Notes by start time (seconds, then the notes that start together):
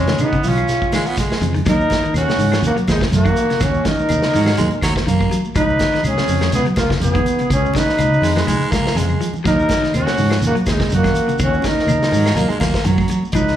Already playing: G#3 C#4
0.07 D#3, snare, closed hi-hat, high conga, shekere
0.18 C#3 D#4, closed hi-hat, high conga, claves, shekere
0.22 B3
0.33 C#3, kick, shekere
0.44 B1 F4, open hi-hat, low conga, shekere
0.48 C#4
0.57 closed hi-hat, claves, shekere
0.68 snare, closed hi-hat, shekere
0.82 kick, shekere
0.92 D#3 G#3, snare, closed hi-hat, high conga, claves, shekere
1.06 B3, closed hi-hat, shekere
1.17 G#3, kick, snare, closed hi-hat, high conga, low conga, shekere
1.30 muted fingered electric bass stroke, snare, high conga, claves, shekere
1.41 F2 C#3, closed hi-hat, low conga, shekere
1.54 D#3, closed hi-hat, shekere
1.65 D#2 F#3 D#4 A#4, kick, snare, closed hi-hat, claves, shekere
1.80 shekere
1.90 kick, snare, closed hi-hat, high conga, shekere
2.03 D#3, high conga, shekere
2.14 D#2 C#4 F#4, closed hi-hat, high conga, claves, shekere
2.28 C#3, snare, shekere
2.38 G#2, open hi-hat, low conga, shekere
2.52 F3, snare, closed hi-hat, claves, shekere
2.62 D#2 A#3 F#4, closed hi-hat, shekere
2.77 F#3, closed hi-hat, shekere
2.88 D#2 G#3 D#4, kick, snare, closed hi-hat, high conga, claves, shekere
3.01 C#3, kick, snare, shekere
3.11 F#2 F#4, closed hi-hat, high conga, low conga, shekere
3.16 A#3
3.25 D#3, kick, closed hi-hat, high conga, claves, shekere
3.36 closed hi-hat, low conga, shekere
3.50 C#3, snare, closed hi-hat, high conga, shekere
3.60 D#2 C#4 F#4, kick, snare, closed hi-hat, claves, shekere
3.74 shekere
3.85 D#3 D#4 A#4, kick, snare, closed hi-hat, high conga, low conga, shekere
3.99 high conga, shekere
4.09 D#2 C#3, closed hi-hat, high conga, claves, shekere
4.22 snare, shekere
4.34 G#2 D#3 F#3, open hi-hat, low conga, shekere
4.46 snare, claves, shekere
4.57 D#2 F#3 G#3, closed hi-hat, shekere
4.71 closed hi-hat, shekere
4.81 D#2 F#3, kick, snare, closed hi-hat, high conga, claves, shekere
4.96 kick, snare, shekere
5.06 F#2 D#3 A#3, closed hi-hat, low conga, shekere
5.19 kick, high conga, claves, shekere
5.31 F#3, closed hi-hat, low conga, shekere
5.44 high conga, shekere
5.55 C#2 F3 D#4 B4, kick, closed hi-hat, claves, shekere
5.69 shekere
5.79 kick, snare, closed hi-hat, high conga, low conga, shekere
5.93 D#3, snare, shekere
6.04 C#2 C#4 G#4, closed hi-hat, high conga, claves, shekere
6.18 C#3, snare, shekere
6.27 F2, open hi-hat, low conga, shekere
6.41 F3, snare, closed hi-hat, claves, shekere
6.52 C#2 B3 G#4, snare, closed hi-hat, shekere
6.65 F#3, closed hi-hat, shekere
6.76 C#2 A#3 F4, kick, snare, closed hi-hat, high conga, claves, shekere
6.90 C#3, kick, snare, shekere
7.00 F2 B3 G#4, closed hi-hat, high conga, shekere
7.14 D#3, kick, closed hi-hat, high conga, claves, shekere
7.26 closed hi-hat, low conga, shekere
7.39 C#3, closed hi-hat, high conga, shekere
7.50 C#2 C#4 G#4, kick, closed hi-hat, claves, shekere
7.66 shekere
7.74 D#3 B4, kick, snare, closed hi-hat, high conga, shekere
7.78 D#4
7.86 snare, high conga, shekere
7.98 C#2 C#3, closed hi-hat, high conga, claves, shekere
8.13 shekere
8.22 F2 D#3 G#3, open hi-hat, low conga, shekere
8.35 G#3, snare, claves, shekere
8.47 C#2 F3 G#3, closed hi-hat, high conga, shekere
8.61 muted fingered electric bass stroke, closed hi-hat, shekere
8.72 C#2 F3 A#3, kick, snare, closed hi-hat, high conga, claves, shekere
8.84 snare, high conga, shekere
8.95 F2 C#3 G#3, snare, closed hi-hat, low conga, shekere
9.09 low conga, claves, shekere
9.20 F3, closed hi-hat, low conga, shekere
9.34 low conga, shekere
9.44 D#2 F#3 D#4 A#4, kick, snare, closed hi-hat, claves, shekere
9.59 shekere
9.69 kick, snare, closed hi-hat, high conga, low conga, shekere
9.82 D#3, snare, high conga, shekere
9.94 D#2 C#4 F#4, closed hi-hat, high conga, claves, shekere
10.06 C#3, snare, shekere
10.18 G#2, open hi-hat, low conga, shekere
10.30 F3, snare, closed hi-hat, claves, shekere
10.42 D#2, closed hi-hat, shekere
10.46 A#3 F#4
10.55 F#3, muted fingered electric bass stroke, closed hi-hat, shekere
10.66 D#2 D#4, kick, snare, closed hi-hat, high conga, claves, shekere
10.71 G#3
10.79 C#3, kick, snare, shekere
10.90 F#2, closed hi-hat, high conga, low conga, shekere
10.94 A#3 F#4
11.03 D#3, kick, snare, closed hi-hat, high conga, claves, shekere
11.14 closed hi-hat, low conga, shekere
11.28 C#3, closed hi-hat, high conga, shekere
11.39 D#2 F#4, kick, closed hi-hat, claves, shekere
11.44 C#4
11.53 shekere
11.62 D#3, kick, snare, closed hi-hat, high conga, low conga, shekere
11.66 D#4 A#4
11.76 snare, high conga, shekere
11.87 D#2 C#3, closed hi-hat, high conga, claves, shekere
12.02 snare, shekere
12.07 F3, low conga
12.12 G#2 D#3 F#3, open hi-hat, shekere
12.25 snare, claves, shekere
12.35 D#2 F#3 A#3, closed hi-hat, shekere
12.50 G#3, muted fingered electric bass stroke, closed hi-hat, shekere
12.60 D#2 F#3 A#3, kick, snare, closed hi-hat, high conga, claves, shekere
12.74 kick, snare, shekere
12.85 F#2 D#3 F#3, closed hi-hat, high conga, low conga, shekere
12.98 kick, high conga, claves, shekere
13.08 F#3, closed hi-hat, low conga, shekere
13.23 high conga, shekere
13.32 C#2 F3 D#4 B4, kick, closed hi-hat, claves, shekere
13.47 snare, shekere